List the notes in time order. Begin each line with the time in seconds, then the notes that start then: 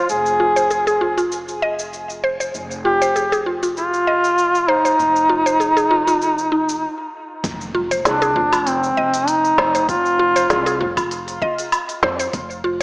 0.09 F1 G#4, shaker
0.26 shaker
0.40 F4
0.56 C5, shaker
0.71 G#4, shaker
0.87 G#4, shaker
1.01 F4
1.18 F4, shaker
1.32 shaker
1.48 shaker
1.62 D#5
1.79 shaker
1.93 shaker
2.10 shaker
2.24 C5
2.40 C5, shaker
2.55 F1, shaker
2.71 shaker
2.85 F4 G4
3.02 C5, shaker
3.16 G#4, shaker
3.32 G#4, shaker
3.46 F4
3.63 F4, shaker
3.76 F4, shaker
3.94 shaker
4.07 D#5
4.24 shaker
4.38 shaker
4.55 shaker
4.68 D#4 C5
4.85 C5, shaker
4.99 F1, shaker
5.16 shaker
5.29 F4
5.46 C5, shaker
5.60 G#4, shaker
5.77 G#4, shaker
5.91 F4
6.07 F4, shaker
6.22 shaker
6.38 shaker
6.52 D#4
6.69 shaker
7.44 F1, kick, open hi-hat, impact, shaker
7.61 shaker
7.75 F4
7.91 C5, open hi-hat, shaker
8.05 C2 D4 G#4, snare, open hi-hat, shaker
8.22 G#4, shaker
8.36 F1 F4, kick
8.52 F4, open hi-hat, low woodblock, shaker
8.67 C4, open hi-hat, shaker
8.83 shaker
8.97 F1 D#5
9.14 open hi-hat, shaker
9.28 D#4, open hi-hat, shaker
9.45 shaker
9.58 F1 C5, snare, low woodblock
9.75 C5, open hi-hat, shaker
9.89 F4, kick, open hi-hat, shaker
10.06 shaker
10.19 F4
10.36 C5, open hi-hat, shaker
10.50 C2 G#4, snare, open hi-hat, shaker
10.66 G#4, open hi-hat, shaker
10.81 F1 F4
10.97 F4, kick, open hi-hat, low woodblock, shaker
11.11 open hi-hat, shaker
11.28 open hi-hat, shaker
11.42 D#5, kick
11.58 open hi-hat, shaker
11.72 open hi-hat, low woodblock, shaker
11.89 open hi-hat, shaker
12.03 F2 C5, snare
12.19 C5, open hi-hat, shaker
12.33 F1, kick, open hi-hat, shaker
12.50 shaker
12.64 F4